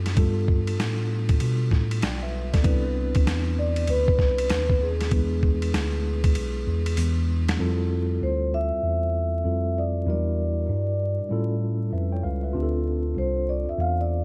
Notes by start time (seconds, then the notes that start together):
Already playing: F#2 C4 E4 F4 G4 A4
0.06 snare, ride
0.15 G2 G3 A3 D4 F4 A4, kick, ride
0.22 B3
0.48 kick
0.67 ride
0.79 A2, snare, hi-hat pedal, ride
1.29 kick, ride
1.40 B2, ride
1.71 A2, kick, snare
1.91 ride
2.02 B1 D5 G5, snare, hi-hat pedal, ride
2.23 B4 E5
2.53 A4 D5, kick, snare, ride
2.62 C2 B3 C4 D4 E4 B4, kick, ride
3.15 kick, ride
3.27 E2, snare, hi-hat pedal, ride
3.59 D5
3.76 ride
3.87 D2 B4, ride
4.08 kick
4.19 C2, kick, snare
4.38 ride
4.50 D#2, snare, hi-hat pedal, ride
4.70 kick
4.82 G#4
5.01 snare, ride
5.10 E2 G3 B3 D4 E4 B4, kick, ride
5.17 G#3
5.43 kick
5.62 ride
5.74 D2, snare, hi-hat pedal, ride
6.24 kick, ride
6.35 B1, ride
6.67 E2
6.86 ride
6.97 E2, hi-hat pedal, ride
7.48 snare, ride
7.57 F2 G3 C4 E4 F4 A4
8.21 D2 C5
8.54 E5
8.72 E2
8.83 E2
9.44 F2 G3 C4 E4 F4 A4
9.78 D5
10.05 E2 F#3 D4 E4 F#4 A#4
10.10 G3 D5
10.69 G2
11.20 A2
11.29 A2 G3 C#4 E4 F4 A4
11.93 F2 B4 E5
12.12 C#5 G5
12.23 C#2 B4 F5
12.43 B4 E5
12.53 D2 C4 D4 F4 G4
12.63 A4
13.16 C2 C5
13.49 D5
13.68 E2 E5
13.79 E2 F5
14.01 D5